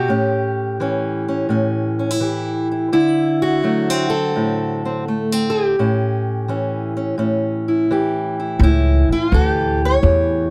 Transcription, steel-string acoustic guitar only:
Already playing: G4
0.08 A2 C#4
0.80 E3 C#4
1.28 C#4
1.49 A2 C#4
1.99 C#4
2.11 E4
2.20 E3 G4
2.72 E4
2.92 D3 E4
3.42 F#4
3.63 F#3 A3
3.90 C4
4.10 A4
4.36 A2
4.85 C4
5.08 A3
5.32 C4
5.50 G4
5.79 A2 C#4
6.48 E3 C#4
6.97 C#4
7.18 A2 C#4
7.68 E4
7.91 E3 G4
8.40 E4
8.61 A2 E4
9.12 F4
9.32 E3 A4
9.36 F#4
9.51 G4
9.85 C#5
10.02 E3 G4

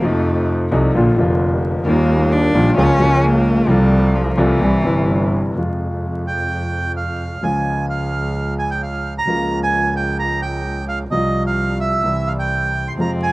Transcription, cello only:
0.05 A3
1.86 A#3
2.32 D4
2.78 C#4
3.25 A#3
3.69 G3
4.15 F3
4.39 E3
12.98 C4

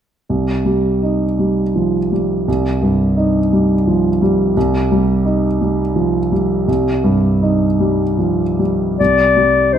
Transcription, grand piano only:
0.29 C2
0.65 G3
1.03 D#4
1.39 G3
1.76 F3
2.12 G3
2.48 C2
2.82 G2
3.17 D#4
3.53 G3
3.87 F3
4.22 G3
4.57 C2
4.92 G3
5.25 D#4
5.61 G3
5.96 F3
6.32 G3
6.68 C2
7.04 G2
7.42 D#4
7.80 G3
8.18 F3
8.59 G3
9.00 C2
9.37 G3
9.74 D#4

